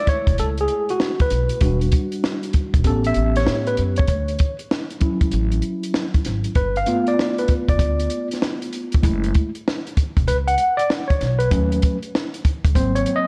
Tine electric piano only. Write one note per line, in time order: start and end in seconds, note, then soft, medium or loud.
0.00 1.58 G#3 medium
0.00 1.58 A3 soft
0.00 1.58 E4 medium
0.09 0.37 C#5 medium
0.40 0.48 A4 medium
0.61 0.91 G#4 medium
0.90 1.19 F#4 medium
1.22 1.79 B4 medium
1.61 2.81 G3 medium
1.61 2.81 D4 soft
1.61 2.81 F#4 medium
2.84 4.04 B3 soft
2.84 4.05 C#4 medium
2.84 4.04 G4 medium
2.84 3.07 A4 medium
3.07 3.35 E5 loud
3.37 3.68 C#5 medium
3.67 3.81 B4 medium
3.98 4.56 C#5 medium
5.00 6.52 F#3 medium
5.00 6.52 C#4 medium
5.00 6.52 E4 medium
6.56 6.77 B4 medium
6.77 7.09 F5 medium
6.87 8.99 A3 medium
6.87 9.00 B3 medium
6.87 9.00 F4 medium
7.08 7.40 D5 medium
7.39 7.53 B4 medium
7.69 8.27 D5 medium
9.03 9.48 G#3 medium
9.03 9.48 A3 medium
9.03 9.49 E4 medium
10.28 10.37 B4 medium
10.48 10.80 F#5 medium
10.77 10.91 D5 medium
11.08 11.37 C#5 medium
11.39 11.97 B4 medium
11.51 11.96 F#3 medium
11.51 11.96 A3 medium
11.51 11.96 C#4 medium
12.75 13.27 F#3 medium
12.75 13.27 A#3 medium
12.75 13.27 C4 medium
12.75 12.96 C5 medium
12.95 13.17 C#5 medium
13.16 13.27 D#5 loud